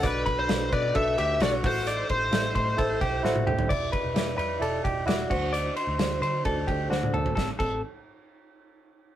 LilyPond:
<<
  \new Staff \with { instrumentName = "Lead electric guitar" } { \time 4/4 \key a \dorian \tempo 4 = 131 b'8. c''8. d''8 e''8 e''8 d''8 c''8~ | c''2. r4 | r1 | r1 |
r1 | }
  \new Staff \with { instrumentName = "Clean electric guitar" } { \time 4/4 \key a \dorian d''8 b''4 b'8 a'8 g'8 fis'8 fis'8 | d''8 c''4 c''8 a'8 g'8 fis'8 g'8 | d''8 b'4 b'8 a'8 g'8 fis'8 fis'8 | d''8 c''4 c''8 a'8 g'8 fis'8 a'8 |
a'8 a'8 r2. | }
  \new Staff \with { instrumentName = "Reed electric piano" } { \time 4/4 \key a \dorian <d' fis' a' b'>4 <d' fis' a' b'>4 <d' fis' a' b'>4 <d' fis' a' d''>8 <e' g' a' c''>8~ | <e' g' a' c''>4 <e' g' a' c''>4 <e' g' a' c''>4 <e' g' a' c''>4 | <e' g' d''>4 <e' g' d''>4 <e' g' d''>4 <e' g' d''>8 <d' fis' c''>8~ | <d' fis' c''>4 <d' fis' c''>4 <d' fis' a'>4 <d' fis' c''>4 |
<c' g' a'>8 <c' g' a'>8 r2. | }
  \new Staff \with { instrumentName = "Picked electric bass" } { \clef bass \time 4/4 \key a \dorian b,,8 b,,8 b,,8 b,8 b,,8 d,8 b,,8 a,,8~ | a,,8 a,,8 a,,8 a,8 a,,8 b,,8 a,,8 a,,8 | e,,8 r16 e,,16 e,,8 e,8 e,,8 e,,8 e,,8 d,8~ | d,8 r16 d,16 d,8 d8 d,8 d,8 d,8 d,8 |
a,,16 r16 a,,8 r2. | }
  \new DrumStaff \with { instrumentName = "Drums" } \drummode { \time 4/4 <hhp bd cymr>8 <bd cymr>8 <cymr sn>8 <bd cymr>8 <bd cymr>8 cymr8 <cymr sn>8 <hho bd cymr>8 | <hhp cymr>8 <bd cymr>8 <cymr sn>8 <bd cymr>8 <bd cymr>8 <bd cymr>8 sn16 tommh16 toml16 tomfh16 | <cymc bd>8 <bd cymr>8 <cymr sn>8 cymr8 cymr8 <bd cymr>8 <cymr sn>8 <cymc bd>8 | <hhp cymr>8 cymr8 <cymr sn>8 cymr8 <bd cymr>8 <bd cymr>8 sn16 tommh16 toml16 tomfh16 |
<bd sn>8 <cymc bd>8 r4 r4 r4 | }
>>